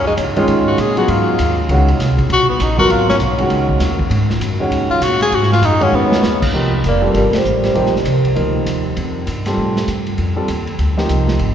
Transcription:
0.00 0.17 F#2 medium
0.07 0.14 G#3 medium
0.17 0.47 G2 medium
0.17 hi-hat pedal medium
0.17 ride medium
0.36 0.76 D#3 medium
0.36 0.76 G#3 medium
0.36 0.76 C#4 medium
0.36 0.76 F4 medium
0.36 ride soft
0.48 0.77 G#2 medium
0.48 ride medium
0.67 0.82 F#4 medium
0.78 1.07 A#2 medium
0.78 0.97 G#4 medium
0.78 hi-hat pedal soft
0.78 ride medium
0.97 1.37 F#3 medium
0.97 1.36 B3 medium
0.97 1.37 F4 medium
0.97 1.12 F#4 medium
0.97 1.37 G#4 medium
0.97 ride soft
1.08 1.38 G#2 medium
1.08 1.58 F4 medium
1.08 ride medium
1.39 1.68 D#2 medium
1.39 hi-hat pedal medium
1.39 ride medium
1.69 1.98 C#2 medium
1.69 1.87 D#3 medium
1.69 1.87 G#3 medium
1.69 1.87 C#4 medium
1.69 1.87 F#4 medium
1.69 ride medium
1.88 ride soft
1.98 2.28 C2 medium
1.98 snare soft
1.98 hi-hat pedal soft
1.98 ride medium
2.18 kick medium
2.18 ride soft
2.29 2.59 B1 medium
2.29 2.48 F#4 medium
2.29 ride medium
2.49 2.64 B3 medium
2.59 2.88 A#1 medium
2.59 2.78 D#4 medium
2.59 hi-hat pedal medium
2.59 ride medium
2.78 3.18 F#3 medium
2.78 3.18 B3 medium
2.78 3.18 F4 medium
2.78 2.93 F#4 loud
2.78 3.18 A#4 medium
2.78 kick medium
2.89 3.18 G#1 medium
2.89 3.08 F4 medium
2.89 ride medium
3.09 3.16 C#4 medium
3.09 snare medium
3.19 3.49 B1 medium
3.19 hi-hat pedal medium
3.19 ride medium
3.38 3.78 D#3 medium
3.38 3.79 G#3 medium
3.38 3.79 C#4 medium
3.38 3.79 F#4 medium
3.38 ride soft
3.49 3.79 C#2 medium
3.49 ride medium
3.69 kick medium
3.79 4.09 D#2 medium
3.79 snare soft
3.79 hi-hat pedal medium
3.79 ride medium
3.99 kick medium
4.10 4.39 G#2 medium
4.10 ride medium
4.30 snare soft
4.40 4.70 F#2 medium
4.40 hi-hat pedal medium
4.40 ride medium
4.60 5.00 D#3 medium
4.60 5.00 G#3 medium
4.60 5.00 C#4 medium
4.60 5.00 F#4 medium
4.70 4.89 D#2 medium
4.70 ride medium
4.90 5.05 F4 loud
4.90 muted upright bass stroke soft
5.01 5.31 A#2 medium
5.01 5.21 F#4 medium
5.01 hi-hat pedal medium
5.01 ride medium
5.21 5.36 G#4 loud
5.21 snare soft
5.21 ride soft
5.32 5.61 G#2 medium
5.32 5.52 F#4 medium
5.32 ride medium
5.43 snare soft
5.52 5.66 F4 medium
5.52 snare soft
5.62 5.92 F#2 medium
5.62 5.84 D#4 medium
5.62 hi-hat pedal medium
5.62 ride medium
5.80 6.20 D#3 medium
5.80 6.21 G#3 medium
5.80 6.21 C#4 medium
5.80 5.96 C#4 medium
5.80 6.21 F#4 medium
5.80 ride soft
5.92 6.22 F2 medium
5.92 6.49 B3 medium
6.12 snare medium
6.23 6.53 D#2 medium
6.23 snare medium
6.23 hi-hat pedal medium
6.42 kick medium
6.42 crash medium
6.53 6.83 C2 medium
6.53 6.71 F3 medium
6.53 6.71 A#3 medium
6.53 6.71 D#4 medium
6.53 6.71 G4 medium
6.84 7.13 F1 medium
6.84 7.03 A#3 medium
6.84 hi-hat pedal soft
6.84 ride medium
6.89 7.04 D5 medium
7.02 7.42 G3 medium
7.02 7.15 G3 medium
7.02 7.42 C4 soft
7.02 7.42 F4 medium
7.02 7.42 A4 medium
7.07 7.16 A#4 medium
7.14 7.32 G1 medium
7.14 7.24 G3 medium
7.14 7.25 A#4 medium
7.14 ride medium
7.33 7.62 G3 medium
7.33 7.64 C5 medium
7.33 muted upright bass stroke soft
7.33 snare medium
7.33 ride medium
7.44 7.74 A1 medium
7.44 hi-hat pedal medium
7.64 7.92 G3 medium
7.64 7.93 C5 medium
7.64 snare soft
7.64 ride soft
7.75 8.04 A#1 medium
7.75 7.92 F3 medium
7.75 7.92 A#3 medium
7.75 7.92 D#4 medium
7.75 7.92 G4 medium
7.75 ride soft
7.86 snare soft
7.96 snare soft
8.05 8.34 C2 medium
8.05 hi-hat pedal soft
8.05 ride medium
8.25 ride soft
8.35 8.65 D2 medium
8.35 8.81 F3 soft
8.35 8.81 A#3 soft
8.35 8.81 D#4 medium
8.35 8.81 A#4 medium
8.35 ride medium
8.66 8.95 D#2 medium
8.66 hi-hat pedal medium
8.66 ride medium
8.97 9.26 F2 medium
8.97 ride medium
9.27 9.56 G2 medium
9.27 hi-hat pedal soft
9.27 ride medium
9.46 9.86 G3 medium
9.46 9.86 C4 soft
9.46 9.86 F4 medium
9.46 9.86 A4 medium
9.46 snare soft
9.46 ride medium
9.57 9.86 A2 medium
9.76 snare soft
9.88 10.17 G2 medium
9.88 hi-hat pedal soft
9.88 ride medium
10.07 ride soft
10.18 10.47 F2 medium
10.18 ride soft
10.36 10.47 G3 medium
10.36 10.47 C4 soft
10.36 10.47 F4 medium
10.36 10.47 A4 medium
10.48 10.78 D#2 medium
10.48 hi-hat pedal medium
10.48 ride medium
10.67 ride soft
10.78 11.08 D2 medium
10.78 ride medium
10.97 11.37 F3 medium
10.97 11.37 A#3 medium
10.97 11.37 D#4 medium
10.97 11.37 G4 medium
10.97 snare soft
11.09 11.38 C2 medium
11.09 hi-hat pedal medium
11.09 ride medium
11.28 snare soft
11.39 11.54 G#1 medium
11.39 ride medium

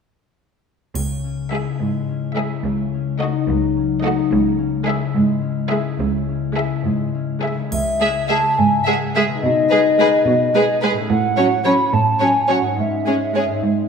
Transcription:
0.95 1.64 C#2 soft
0.95 2.63 C#3 soft
0.95 triangle soft
1.24 2.07 C#4 soft
1.51 1.73 G#3 soft
1.51 2.35 E4 soft
1.51 1.73 G#4 soft
1.51 1.73 E5 soft
1.80 2.48 G#2 soft
1.80 2.66 G#3 soft
2.09 2.92 C#4 soft
2.35 2.58 G#3 soft
2.35 2.67 E4 soft
2.35 2.58 G#4 soft
2.35 2.57 E5 soft
2.65 3.32 C#2 soft
2.65 4.30 C#3 soft
2.94 3.76 C#4 soft
3.20 3.42 A3 soft
3.20 4.03 D#4 soft
3.20 3.42 F#4 soft
3.20 3.41 D#5 soft
3.48 4.15 C#2 medium
3.48 4.34 F#3 soft
3.77 4.57 C#4 soft
4.03 4.25 A3 soft
4.03 4.34 D#4 soft
4.03 4.25 F#4 soft
4.03 4.24 D#5 soft
4.32 4.98 C#2 medium
4.32 5.97 C#3 soft
4.58 5.40 C#4 soft
4.86 5.08 G#3 soft
4.86 5.69 E4 soft
4.86 5.07 G#4 soft
4.86 5.08 E5 soft
5.14 5.82 G#2 medium
5.14 6.84 G#3 soft
5.42 6.27 C#4 soft
5.70 5.92 G#3 soft
5.70 6.55 E4 soft
5.70 5.91 G#4 soft
5.70 5.91 E5 soft
5.99 6.68 C#2 medium
5.99 7.53 C#3 soft
6.28 7.13 C#4 soft
6.55 6.77 G#3 soft
6.55 7.43 E4 soft
6.55 6.77 G#4 soft
6.55 6.77 E5 soft
6.85 7.55 G#2 soft
6.85 7.58 G#3 soft
7.14 7.63 C#4 soft
7.42 7.65 G#3 soft
7.42 9.46 E4 soft
7.42 7.64 G#4 soft
7.42 7.65 E5 soft
7.54 9.36 C#3 soft
7.60 9.29 G#3 soft
7.64 9.41 C#4 soft
7.68 8.41 C#2 soft
7.68 9.38 G#4 soft
7.68 8.25 E5 soft
7.68 triangle soft
8.00 8.09 G#3 soft
8.00 8.08 G#4 soft
8.00 8.09 E5 soft
8.28 8.38 G#3 soft
8.28 8.37 G#4 soft
8.28 8.36 E5 soft
8.28 8.59 A5 medium
8.58 9.26 G#2 soft
8.58 8.86 G#5 soft
8.86 8.95 G#3 soft
8.86 8.95 G#4 soft
8.86 8.94 E5 soft
8.86 8.93 F#5 medium
9.15 9.23 G#3 soft
9.15 9.23 G#4 soft
9.15 9.21 E5 medium
9.15 9.23 E5 soft
9.25 11.03 B2 soft
9.30 11.05 G#3 soft
9.35 11.08 D#4 soft
9.39 11.10 G#4 soft
9.39 10.78 D#5 medium
9.44 10.11 B2 soft
9.70 9.80 G#3 soft
9.70 9.79 G#4 soft
9.70 9.78 B4 soft
9.99 10.07 G#3 soft
9.99 10.08 G#4 soft
9.99 10.08 B4 soft
10.27 10.94 B2 medium
10.55 10.63 G#3 soft
10.55 10.64 G#4 soft
10.55 10.63 B4 soft
10.82 10.91 G#3 soft
10.82 10.92 G#4 soft
10.82 10.90 B4 soft
10.92 12.72 A2 soft
10.97 12.74 A3 soft
11.01 12.68 C#4 soft
11.06 12.78 F#4 soft
11.10 11.76 A2 medium
11.10 11.61 F#5 medium
11.37 11.46 F#3 soft
11.37 11.46 C#4 soft
11.37 11.45 C#5 soft
11.64 11.73 F#3 soft
11.64 11.74 C#4 soft
11.64 11.72 C#5 soft
11.64 11.95 B5 medium
11.93 12.61 A2 medium
11.93 12.25 A5 medium
12.20 12.29 F#3 soft
12.20 12.29 C#4 soft
12.20 12.28 C#5 soft
12.20 12.53 G#5 medium
12.48 12.57 F#3 soft
12.48 12.56 C#4 soft
12.48 12.56 C#5 soft
12.48 12.79 F#5 soft
12.61 13.45 G#2 soft
12.65 13.49 G#3 soft
12.70 13.62 C#4 soft
12.74 13.58 G#4 soft
12.79 13.47 G#2 soft
12.79 13.62 E5 soft
13.06 13.14 G#3 soft
13.06 13.15 C#4 soft
13.06 13.14 G#4 soft
13.34 13.42 G#3 soft
13.34 13.43 C#4 soft
13.34 13.44 G#4 soft
13.46 13.88 G#2 soft
13.51 13.88 G#3 soft
13.55 13.88 C4 soft
13.59 13.88 G#4 soft
13.65 13.88 G#2 soft

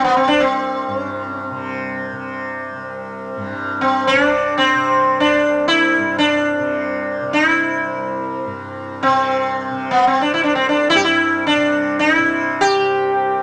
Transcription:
0.00 0.25 C2 soft
0.00 0.87 G2 medium
0.00 1.51 C3 medium
0.04 0.16 B3 medium
0.17 0.28 C4 medium
0.25 2.74 C2 medium
0.25 0.41 D4 medium
0.40 0.97 C4 medium
0.88 3.36 G2 medium
0.97 1.12 C#4 medium
1.12 1.29 C4 medium
1.29 1.44 C#4 medium
1.44 2.00 C4 medium
1.51 2.12 C3 medium
2.12 4.13 C3 medium
2.74 5.35 C2 medium
3.37 3.50 G2 medium
3.50 5.98 G2 medium
3.81 4.05 C4 medium
4.07 4.57 D4 medium
4.13 4.75 C3 medium
4.58 5.20 C4 medium
4.75 6.59 C3 medium
5.20 5.67 D4 medium
5.36 7.83 C2 medium
5.68 6.18 E4 medium
5.98 8.45 G2 medium
6.18 7.33 D4 medium
6.59 7.21 C3 medium
7.21 9.08 C3 medium
7.33 7.48 D#4 medium
7.48 8.43 E4 medium
7.83 10.31 C2 medium
8.45 10.93 G2 medium
9.03 9.91 C4 medium
9.08 9.70 C3 medium
9.70 11.56 C3 medium
9.91 10.07 B3 medium
10.07 10.20 C4 medium
10.21 10.32 D4 medium
10.32 12.80 C2 medium
10.32 10.43 E4 medium
10.44 10.55 D4 medium
10.55 10.68 C4 medium
10.69 10.89 D4 medium
10.90 10.96 E4 medium
10.94 13.42 G2 medium
10.94 11.02 G4 medium
11.04 11.46 E4 medium
11.47 11.99 D4 medium
11.56 12.18 C3 medium
11.99 12.14 D#4 medium
12.14 13.43 C3 medium
12.14 12.62 E4 medium
12.61 13.43 G4 medium
12.80 13.43 C2 medium

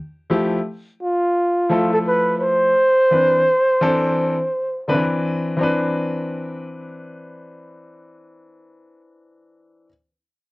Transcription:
0.30 0.57 F3 medium
0.30 0.57 A3 medium
0.30 0.58 E4 medium
0.30 0.58 G4 medium
1.02 1.90 F4 medium
1.69 2.71 F3 medium
1.69 2.71 A3 medium
1.69 2.71 E4 medium
1.69 2.72 A4 medium
1.93 1.99 A4 medium
2.07 2.38 B4 loud
2.38 2.42 B4 medium
2.38 4.88 C5 loud
3.11 3.39 E3 medium
3.11 3.39 C4 medium
3.11 3.39 D4 medium
3.11 3.39 B4 medium
3.81 4.35 E3 medium
3.81 4.35 C4 medium
3.81 4.35 D4 medium
3.81 4.35 A4 medium
4.87 4.96 D3 medium
4.87 5.57 C4 medium
4.87 5.59 D4 medium
4.87 5.59 B4 medium
4.94 5.55 E3 medium
5.57 9.86 E3 medium
5.57 9.87 C4 medium
5.61 9.88 D4 medium
5.61 9.90 B4 medium

